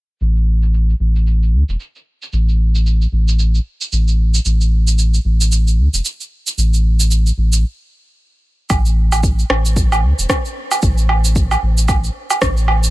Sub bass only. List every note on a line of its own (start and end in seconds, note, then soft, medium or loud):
0.21 0.94 A1 medium
1.00 1.55 A1 medium
1.53 1.63 D2 medium
1.69 1.76 E1 medium
2.33 3.06 A1 medium
3.12 3.59 A1 medium
3.93 4.39 A1 medium
4.45 5.19 A1 medium
5.25 5.80 A1 medium
5.78 5.88 D2 medium
5.93 6.01 E1 medium
6.58 7.31 A1 loud
7.38 7.64 A1 medium
8.70 9.44 A1 loud
9.50 10.05 A1 medium
10.03 10.13 D2 medium
10.18 10.26 E1 medium
10.83 11.56 A1 loud
11.63 12.09 A1 medium
12.42 12.89 A1 medium